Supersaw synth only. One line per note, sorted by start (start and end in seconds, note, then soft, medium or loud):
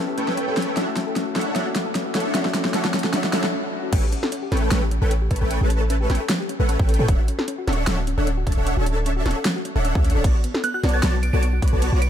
0.17 0.45 A3 medium
0.17 0.45 A4 medium
0.17 0.45 B4 medium
0.17 0.45 C#5 medium
0.17 0.45 G5 loud
0.48 0.55 A3 medium
0.48 0.55 A4 medium
0.48 0.55 B4 medium
0.48 0.55 C#5 medium
0.48 0.55 G5 loud
0.57 0.75 A3 medium
0.57 0.75 A4 medium
0.57 0.75 B4 medium
0.57 0.75 C#5 medium
0.57 0.75 G5 medium
0.77 0.87 D4 medium
0.77 0.87 A4 medium
0.77 0.87 C#5 medium
0.77 0.87 E5 medium
0.77 0.87 F#5 loud
1.36 1.54 D4 medium
1.36 1.54 A4 medium
1.36 1.54 C#5 medium
1.36 1.54 E5 medium
1.36 1.54 F#5 medium
1.56 1.66 D4 medium
1.56 1.66 A4 medium
1.56 1.66 C#5 medium
1.56 1.66 E5 medium
1.56 1.66 F#5 loud
2.15 2.33 D4 medium
2.15 2.33 A4 medium
2.15 2.33 C#5 medium
2.15 2.33 E5 medium
2.15 2.33 F#5 loud
2.35 2.45 D4 loud
2.35 2.45 A4 medium
2.35 2.45 C#5 medium
2.35 2.45 E5 medium
2.35 2.45 F#5 loud
2.74 2.85 D4 loud
2.74 2.85 A4 medium
2.74 2.85 C#5 loud
2.74 2.85 E5 loud
2.74 2.85 F#5 loud
3.14 3.24 D4 loud
3.14 3.24 A4 medium
3.14 3.24 C#5 medium
3.14 3.24 E5 medium
3.14 3.24 F#5 loud
3.33 3.44 D4 loud
3.33 3.44 A4 medium
3.33 3.44 C#5 loud
3.33 3.44 E5 loud
3.33 3.44 F#5 loud
3.93 4.03 A3 loud
3.93 4.03 A4 medium
3.93 4.03 B4 loud
3.93 4.03 C#5 medium
3.93 4.03 G5 loud
4.52 4.69 A3 medium
4.52 4.69 A4 medium
4.52 4.69 B4 medium
4.52 4.69 C#5 medium
4.52 4.69 G5 loud
4.71 4.82 A3 medium
4.71 4.82 A4 medium
4.71 4.82 B4 medium
4.71 4.82 C#5 medium
4.71 4.82 G5 loud
5.02 5.11 A3 medium
5.02 5.11 A4 medium
5.02 5.11 B4 medium
5.02 5.11 C#5 medium
5.02 5.11 G5 medium
5.31 5.39 A3 medium
5.31 5.39 A4 medium
5.31 5.39 B4 medium
5.31 5.39 C#5 medium
5.31 5.39 A5 medium
5.41 5.58 A3 medium
5.41 5.58 A4 medium
5.41 5.58 B4 medium
5.41 5.58 C#5 medium
5.41 5.58 G5 loud
5.61 6.07 A3 medium
5.61 6.08 A4 medium
5.61 6.08 B4 medium
5.61 6.07 C#5 medium
5.61 6.07 A5 medium
6.10 6.20 A3 medium
6.10 6.20 A4 medium
6.10 6.20 B4 medium
6.10 6.20 C#5 medium
6.10 6.20 G5 medium
6.60 6.77 A3 medium
6.60 6.77 A4 medium
6.60 6.77 B4 medium
6.60 6.77 C#5 medium
6.60 6.77 F#5 medium
6.79 6.97 A4 medium
6.79 6.97 B4 medium
6.79 6.97 C#5 medium
6.79 6.97 G5 medium
6.99 7.07 A3 medium
6.99 7.07 A4 medium
6.99 7.07 B4 medium
6.99 7.07 C#5 medium
6.99 7.07 G5 medium
7.08 7.19 D4 loud
7.08 7.19 A4 medium
7.08 7.19 C#5 medium
7.08 7.19 E5 medium
7.08 7.19 F#5 loud
7.68 7.85 D4 medium
7.68 7.85 A4 medium
7.68 7.85 C#5 medium
7.68 7.85 E5 medium
7.68 7.85 F#5 loud
7.87 7.98 D4 medium
7.87 7.98 A4 medium
7.87 7.98 C#5 medium
7.87 7.98 E5 medium
7.87 7.98 F#5 loud
8.18 8.27 D4 medium
8.18 8.27 A4 medium
8.18 8.27 C#5 medium
8.18 8.27 E5 medium
8.18 8.27 F#5 medium
8.47 8.55 D4 medium
8.47 8.55 A4 medium
8.47 8.55 C#5 medium
8.47 8.55 E5 medium
8.47 8.55 A5 medium
8.57 8.74 D4 medium
8.57 8.74 A4 medium
8.57 8.74 C#5 medium
8.57 8.74 E5 medium
8.57 8.74 F#5 loud
8.77 9.23 D4 medium
8.77 9.23 A4 medium
8.77 9.23 C#5 medium
8.77 9.23 E5 medium
8.77 9.23 A5 loud
9.25 9.36 D4 medium
9.25 9.36 A4 medium
9.25 9.36 C#5 medium
9.25 9.36 E5 medium
9.25 9.36 F#5 medium
9.75 9.93 D4 medium
9.75 9.93 A4 medium
9.75 9.93 C#5 medium
9.75 9.93 E5 medium
9.75 9.93 F#5 medium
9.95 10.13 D4 medium
9.95 10.13 A4 medium
9.95 10.13 C#5 medium
9.95 10.13 E5 medium
9.95 10.13 F#5 loud
10.15 10.23 D4 medium
10.15 10.23 A4 medium
10.15 10.23 C#5 medium
10.15 10.23 E5 medium
10.15 10.23 F#5 medium
10.24 10.35 B3 loud
10.24 10.35 F#4 medium
10.24 10.35 C#5 medium
10.24 10.35 D5 loud
10.83 11.01 B3 medium
10.83 11.01 F#4 medium
10.83 11.01 C#5 medium
10.83 11.01 D5 medium
10.83 11.01 A5 loud
11.03 11.14 B3 medium
11.03 11.14 F#4 medium
11.03 11.14 C#5 medium
11.03 11.14 D5 medium
11.03 11.14 A5 loud
11.33 11.43 B3 medium
11.33 11.43 F#4 medium
11.33 11.43 C#5 medium
11.33 11.43 D5 medium
11.33 11.43 A5 loud
11.62 11.70 B3 medium
11.62 11.70 F#4 medium
11.62 11.70 C#5 medium
11.62 11.70 D5 medium
11.62 11.70 B5 loud
11.73 11.90 B3 medium
11.73 11.90 F#4 medium
11.73 11.90 C#5 medium
11.73 11.90 D5 medium
11.73 11.90 A5 loud
11.93 12.10 B3 medium
11.93 12.10 F#4 medium
11.93 12.10 C#5 medium
11.93 12.10 D5 medium
11.93 12.10 B5 loud